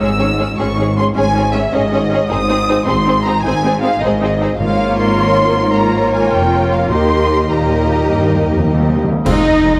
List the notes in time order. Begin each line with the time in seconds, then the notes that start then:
0.00 G#1 G#2 C#4 G#4 C#5 E6
0.19 G#3 C#4 G#4 C#5
0.39 G#3 C#4 G#4 C#5
0.59 G#1 G#2 G#3 C#4 G#4 C#5 C#6
0.76 G#3 C#4 G#4
0.81 C#5
0.96 G#3 C#4 G#4 C#5 C6
1.15 G#1 G#2 G#3 C#4 G#4 C#5 G#5
1.34 G#3 C#4 G#4 C#5
1.53 G#3 C#4 G#4 C#5 E5
1.73 G#1 G#2 G#3 C#4 G#4 C#5 D#5
1.91 G#3 C#4 G#4 C#5
2.09 G#3 C#4 G#4
2.13 C#5
2.28 G#1 G#2 C4 D#4 G#4 C5 D#6
2.49 C4 D#4 G#4 C5
2.68 C4 D#4 G#4 C5
2.86 G#1 G#2 C4 D#4 G#4 C5 C6
3.06 C4 D#4 G#4 C5
3.25 C4 D#4 G#4 C5 A#5
3.43 G#1 G#2 C4 D#4 G#4 G#5
3.47 C5
3.64 C4 D#4 G#4 C5
3.82 C4 D#4 G#4 C5 F5
4.01 G#1 G#2 C4 D#4 C5 D#5
4.05 G#4
4.21 C4 D#4 G#4 C5
4.40 C4 D#4 G#4 C5
4.59 G#1 G#2 A#3 F4 A#4 C#5 F5
4.99 C6
5.75 A#3 F4 A#4 C#5 A#5
6.13 G#5
6.33 F1 F2 G5
6.73 F5
6.91 D#2 A#3 G4 A#4 D#5 C6
7.01 D#3
7.08 D#3
7.16 D#3
7.23 D#3
7.30 D#3
7.37 D#3
7.46 D#3
7.50 A#2 A#3 G4 A#4 D#5 A#5
7.55 D#3
7.61 D#3
7.69 D#3
7.75 D#3
7.84 D#3
7.90 D#3
7.97 D#3
8.06 D#3
8.11 G2 D#3
8.21 D#3
8.29 D#3
8.35 D#3
8.43 D#3
8.49 F2 D#3
8.59 D#3
8.66 D#2 D#3
8.74 D#3
8.81 D#3
8.89 D#3
8.96 D#3
9.04 C#2 D#3
9.12 D#3
9.25 F1 F2 G#3 C4 D#4 F4 D#5, concert bass drum, crash
9.64 F1 G#3 D#4 G#4